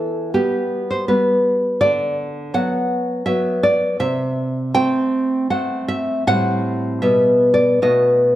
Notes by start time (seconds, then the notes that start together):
Already playing: E3 A4
0.34 G3 B3 G4
0.91 C5
1.08 G3 B3 B4
1.81 D3 D5
2.54 F#3 B3 F#5
3.26 F#3 B3 E5
3.63 D5
4.00 C3 E5
4.74 A3 C4 G5
5.50 A3 C4 F#5
5.88 E5
6.27 A2 G3 C4 F#5
7.02 B2 G3 B3 E5
7.54 D5
7.82 B2 A3 B3 D#5